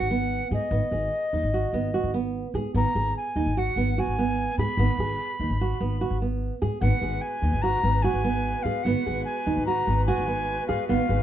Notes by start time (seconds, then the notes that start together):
Already playing: F#5
0.00 G#1
0.11 B3
0.51 G#2 G#4 D#5
0.71 G#1 B3
0.91 G#1 G#4
1.33 D#2 D#4
1.43 G#1
1.54 F#4
1.73 G#1 B3
1.94 F#4
2.04 G#1
2.14 B3
2.54 G#2 G#4
2.74 G#1 B3 A#5
2.95 G#1 G#4
3.17 G#5
3.36 D#2 D#4
3.46 G#1
3.57 F#4 F#5
3.76 G#1 B3
3.98 F#4 G#5
4.07 G#1
4.19 B3
4.58 G#2 G#4 B5
4.77 G#1 B3
4.99 G#1 G#4
5.40 D#2 D#4
5.50 G#1
5.61 F#4
5.81 G#1 B3
6.01 F#4
6.10 G#1
6.22 B3
6.62 G#2 G#4
6.81 G#1 G#3 B3 F#4 B4 F#5
7.02 G#1 G#4
7.21 G#5
7.42 D#2 D#4
7.53 G#1
7.62 F#4 A#5
7.83 G#1 B3
8.02 F#4 G#5
8.14 G#1
8.24 B3
8.63 G#2 G#4 F5
8.83 G#1 B3 F#5
9.06 G#1 G#4
9.25 G#5
9.46 D#2 D#4
9.57 G#1
9.66 F#4 A#5
9.87 G#1 B3
10.06 F#4 G#5
10.18 G#1
10.28 B3
10.68 G#2 G#4 F5
10.88 G#1 B3 F5
11.09 G#1 G#4